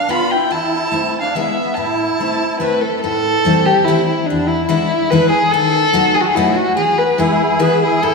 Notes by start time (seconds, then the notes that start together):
Already playing: F5
0.09 B3 D4 F4 B4 B5
0.31 E4 G5
0.51 E2 E4 A5
0.92 A3 C4 E4 A4
1.21 D4 F5
1.35 G#3 B3 E4 G#4 E5
1.75 A2 E4 A5
2.20 A3 C4 E4 A4
2.60 A3 C4 E4 A4 B4
2.81 A4
3.01 A2 A4
3.45 E3 G3 A3 C4 E4
3.66 G4
3.85 E3 G3 A3 E4
3.89 C4 E4
4.07 E4
4.27 E2 D4
4.47 E4
4.67 E3 G#3 B3 D4 E4
5.10 E3 G#3 B3 D4 E4 B4
5.30 G#4
5.51 D#3 A4
5.93 F#3 A3 B3 D#4 F#4
6.14 G#4
6.21 F#4
6.25 G#4
6.35 F#3 A3 B3 D#4 E4 F#4
6.56 F#4
6.77 E2 G#4
6.98 B4
7.18 E3 G#3 B3 E4 G#4
7.59 E3 G#3 B3 E4 G#4 B4
7.82 E4 G#4
8.03 A2 E4 A4